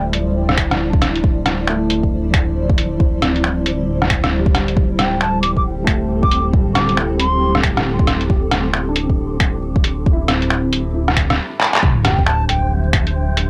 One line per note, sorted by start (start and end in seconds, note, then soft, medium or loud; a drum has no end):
0.00 4.75 D1 medium
0.00 4.73 F3 medium
0.00 11.34 G3 medium
0.00 0.25 A3 medium
0.00 4.79 E4 medium
0.00 11.35 E4 medium
0.00 11.34 C5 medium
0.00 4.73 D5 medium
0.13 closed hi-hat medium
0.49 cross-stick medium
0.58 finger snap loud
0.58 kick medium
0.58 closed hi-hat medium
0.71 cross-stick medium
0.71 closed hi-hat soft
0.90 1.60 D4 medium
0.90 kick loud
1.02 cross-stick medium
1.02 closed hi-hat medium
1.16 closed hi-hat soft
1.24 kick loud
1.46 cross-stick medium
1.46 closed hi-hat medium
1.67 2.43 A3 medium
1.67 finger snap loud
1.90 closed hi-hat medium
2.03 kick medium
2.34 finger snap loud
2.34 kick loud
2.34 closed hi-hat medium
2.70 kick loud
2.78 closed hi-hat medium
3.00 kick loud
3.22 3.96 C4 medium
3.22 cross-stick medium
3.22 closed hi-hat medium
3.36 closed hi-hat soft
3.44 finger snap loud
3.66 closed hi-hat medium
4.02 cross-stick medium
4.10 finger snap loud
4.10 kick medium
4.10 closed hi-hat medium
4.24 cross-stick medium
4.24 closed hi-hat soft
4.39 4.95 G3 medium
4.46 kick loud
4.55 cross-stick medium
4.55 closed hi-hat medium
4.68 closed hi-hat soft
4.76 11.38 D1 medium
4.76 11.34 C4 medium
4.76 11.38 G4 medium
4.76 11.34 A4 medium
4.76 kick loud
4.99 5.19 G5 medium
4.99 cross-stick medium
4.99 closed hi-hat soft
5.21 5.41 A5 medium
5.21 finger snap loud
5.42 5.51 D6 medium
5.42 closed hi-hat soft
5.57 5.62 D6 medium
5.57 kick medium
5.84 6.56 A3 medium
5.84 finger snap loud
5.84 kick loud
5.84 closed hi-hat medium
6.23 6.46 D6 medium
6.23 kick loud
6.31 closed hi-hat medium
6.53 7.27 G3 medium
6.53 kick loud
6.74 6.98 D6 medium
6.74 cross-stick medium
6.74 closed hi-hat soft
6.89 closed hi-hat soft
6.97 finger snap loud
7.16 7.88 C4 medium
7.16 7.55 C6 medium
7.16 closed hi-hat medium
7.55 cross-stick medium
7.63 finger snap loud
7.63 kick medium
7.63 closed hi-hat medium
7.77 cross-stick medium
7.77 closed hi-hat soft
7.99 kick loud
8.07 cross-stick medium
8.07 closed hi-hat medium
8.21 closed hi-hat soft
8.30 kick loud
8.51 cross-stick medium
8.51 closed hi-hat medium
8.73 finger snap medium
8.89 9.58 D4 medium
8.96 closed hi-hat medium
9.10 kick medium
9.40 finger snap loud
9.40 kick medium
9.40 closed hi-hat medium
9.76 kick loud
9.84 closed hi-hat medium
10.06 kick loud
10.13 10.85 E4 medium
10.28 11.02 C4 medium
10.28 cross-stick medium
10.28 closed hi-hat medium
10.42 closed hi-hat soft
10.50 finger snap loud
10.73 closed hi-hat medium
10.94 11.35 E4 medium
11.08 cross-stick medium
11.17 finger snap medium
11.17 kick medium
11.17 closed hi-hat medium
11.30 cross-stick medium
11.30 closed hi-hat soft
11.61 clap medium
11.74 clap loud
11.82 13.50 D1 medium
11.82 13.50 F3 medium
11.82 13.50 G3 medium
11.82 13.50 D4 medium
11.82 13.50 C5 medium
11.82 13.50 E5 medium
11.82 kick loud
11.82 sub drop medium
12.05 12.78 G4 medium
12.05 12.25 G5 medium
12.05 cross-stick medium
12.05 closed hi-hat medium
12.19 kick medium
12.26 12.47 A5 medium
12.26 finger snap loud
12.49 12.72 G5 medium
12.49 closed hi-hat medium
12.93 finger snap loud
12.93 kick loud
12.93 closed hi-hat medium
13.07 closed hi-hat soft
13.37 closed hi-hat medium